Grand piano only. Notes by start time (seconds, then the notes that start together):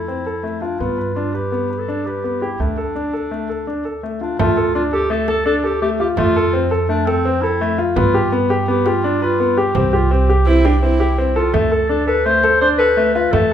0.08 C4
0.26 A4
0.43 A3
0.62 F4
0.80 B3
0.98 B4
1.16 D4
1.34 B4
1.52 B3
1.70 B4
1.88 D4
2.06 B4
2.24 B3
2.42 G4
2.60 A3
2.77 A4
2.96 D4
3.13 A4
3.31 A3
3.49 A4
3.67 D4
3.85 A4
4.03 A3
4.21 F4
4.39 A3
4.57 A4
4.75 D4
4.93 A4
5.10 A3
5.28 A4
5.46 D4
5.64 A4
5.82 A3
6.00 F4
6.18 A3
6.36 A4
6.53 C4
6.71 A4
6.89 A3
7.07 A4
7.25 C4
7.43 A4
7.61 A3
7.79 F4
7.96 B3
8.14 G4
8.32 B3
8.50 G4
8.68 B3
8.86 G4
9.04 D4
9.22 B4
9.40 B3
9.57 G4
9.75 C4
9.93 G4
10.11 C4
10.29 G4
10.47 C4
10.65 G4
10.83 C4
11.00 G4
11.18 C4
11.36 A4
11.54 A3
11.72 A4
11.89 D4
12.08 A4
12.26 A3
12.44 A4
12.61 D4
12.79 A4
12.97 A3
13.15 F4
13.33 A3